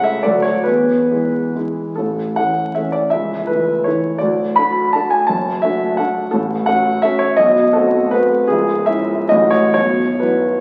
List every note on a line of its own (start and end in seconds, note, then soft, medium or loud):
0.00 0.26 C#2 medium
0.00 0.21 C#3 soft
0.00 0.21 A3 soft
0.00 0.21 A4 soft
0.00 0.04 E5 medium
0.00 0.24 E5 medium
0.00 0.26 F#5 medium
0.23 0.65 D2 medium
0.23 0.63 F#3 soft
0.23 0.63 A3 soft
0.23 0.63 A4 soft
0.23 0.44 D5 medium
0.42 0.65 C#5 medium
0.64 1.10 E2 soft
0.64 1.54 B4 medium
1.11 1.51 E3 soft
1.11 1.52 G#3 soft
1.11 1.52 E4 soft
1.55 1.94 E3 soft
1.55 1.94 G#3 soft
1.55 1.94 E4 soft
1.96 2.37 A1 soft
1.96 2.37 A2 soft
1.96 2.38 A4 medium
2.36 2.74 E3 soft
2.36 2.74 A3 soft
2.36 2.74 C#4 soft
2.36 2.76 F#5 medium
2.75 3.08 E3 soft
2.75 3.09 A3 soft
2.75 3.09 C#4 soft
2.75 2.94 E5 medium
2.92 3.11 D5 medium
3.10 3.48 C#1 soft
3.10 3.48 C#2 soft
3.10 3.47 E5 medium
3.47 3.83 E3 soft
3.47 3.83 A3 soft
3.47 3.83 E4 soft
3.47 3.86 B4 medium
3.84 4.18 E3 soft
3.84 4.18 A3 soft
3.84 4.18 E4 soft
3.84 4.20 C#5 medium
4.18 4.57 D1 soft
4.18 4.57 D2 soft
4.18 4.57 D5 medium
4.56 4.92 A3 soft
4.56 4.92 D4 soft
4.56 4.92 F#4 soft
4.56 4.94 B5 medium
4.93 5.26 A3 soft
4.93 5.26 D4 soft
4.93 5.26 F#4 soft
4.93 5.11 A5 medium
5.10 5.28 G#5 medium
5.27 5.63 F#1 soft
5.27 5.63 F#2 soft
5.27 5.63 A5 medium
5.62 5.96 A3 soft
5.62 5.96 D4 soft
5.62 5.96 F#4 soft
5.62 5.98 E5 medium
5.97 6.29 A3 soft
5.97 6.30 D4 soft
5.97 6.30 F#4 soft
5.97 6.32 F#5 medium
6.31 6.67 A1 soft
6.31 6.67 A2 soft
6.31 6.67 A4 medium
6.66 7.01 A3 soft
6.66 7.01 C#4 soft
6.66 7.01 F#4 soft
6.66 7.04 F#5 medium
7.02 7.35 A3 soft
7.02 7.36 C#4 soft
7.02 7.36 F#4 soft
7.02 7.21 E5 medium
7.19 7.37 C#5 medium
7.37 7.74 B0 soft
7.37 7.74 B1 medium
7.37 7.74 D#5 medium
7.73 8.09 A3 soft
7.73 8.10 C4 soft
7.73 8.10 F#4 soft
7.73 8.12 A4 medium
8.11 8.46 A3 soft
8.11 8.46 C4 soft
8.11 8.47 F#4 soft
8.11 8.48 B4 medium
8.47 8.87 C#1 soft
8.47 8.87 C#2 medium
8.47 8.87 G#4 medium
8.86 9.27 G#3 soft
8.86 9.27 C#4 soft
8.86 9.27 E4 soft
8.86 9.30 E5 medium
9.29 9.74 A1 medium
9.29 9.74 A2 medium
9.29 9.71 F#3 soft
9.29 9.72 E4 soft
9.29 9.72 F#4 soft
9.29 9.52 D#5 medium
9.50 9.72 C#5 medium
9.74 10.21 B0 soft
9.74 10.21 B1 soft
9.74 10.21 C#5 medium
10.20 10.61 F#3 soft
10.20 10.61 E4 soft
10.20 10.61 F#4 soft
10.20 10.61 B4 medium